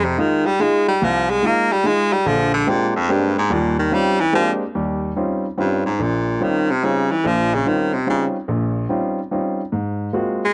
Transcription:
Already playing: F2
0.04 C3
0.18 D#3 G#3 D#4 F4
0.46 G3
0.60 G#3 D#4 F4
0.88 G3
1.02 C2 F3
1.30 G#3
1.43 G#3 A#3 D#4 F4
1.72 G3
1.84 G#3 D#4 F4
2.13 G3
2.26 A#1 D3 F3
2.54 D3
2.67 A#2 G#3 A#3 C4 D4 G4
2.96 F2
3.09 G2 G#3 A#3 C4 D4 G4
3.38 G#2
3.50 D#2 A#2 G3
3.79 D#3
3.91 G3 C4 C#4 D#4 F4
4.20 E3
4.33 F3 G#3 A#3 C4 D4 G4
4.75 D#2 G3
5.16 G3 C4 C#4 D#4 F4
5.58 G2 G3 C4 C#4 D#4 F4
5.86 G#2
5.99 A#1 A#2
6.41 D#3 G3 C4 C#4 D#4 F4
6.71 C3
6.83 C#3 G3 C4 C#4 D#4 F4
7.11 E3
7.24 A#1 A#2 F3
7.54 C#3
7.65 D#3 G3 C4 C#4 D#4 F4
7.94 C3
8.06 C#3 G3 C4 C#4 D#4 F4
8.48 A#1 A#2
8.89 G3 C4 C#4 D#4 F4
9.31 G3 C4 C#4 D#4 F4
9.72 G#2
10.13 G#3 A#3 C4 F4 F#4
10.45 G#3

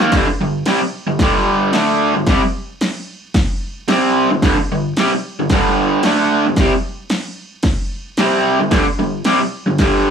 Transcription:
0.00 D#3 A#3, snare
0.12 G2 D3, kick, snare, crash
0.29 muted overdriven electric guitar stroke
0.41 G2 D3
0.66 C3 G3, snare, crash
0.81 muted overdriven electric guitar stroke
1.07 G2 D3
1.19 G2 D3, kick, snare, crash
1.24 G3
1.73 D3 A3 D4, snare, crash
2.15 G2 D3
2.27 C3 G3, kick, snare, crash
2.81 snare, crash
3.34 kick, snare, crash
3.88 C3 G3 C4, snare, crash
4.30 G2 D3
4.42 G2 D3, kick, snare, crash
4.59 muted overdriven electric guitar stroke
4.72 G2 D3
4.97 C3 G3, snare, crash
5.12 muted overdriven electric guitar stroke
5.39 G2 D3
5.50 G2 D3, kick, snare, crash
5.54 G3
6.03 D3 A3 D4, snare, crash
6.45 G2 D3
6.56 C3, kick, snare, crash
6.61 G3
7.10 snare, crash
7.63 kick, snare, crash
8.17 C3 G3 C4, snare, crash
8.59 G2 D3
8.71 G2 D3, kick, snare, crash
8.85 muted overdriven electric guitar stroke
8.99 G2 D3
9.24 C3 G3, snare, crash
9.41 muted overdriven electric guitar stroke
9.66 G2 D3
9.78 G2 D3 G3, kick, snare, crash

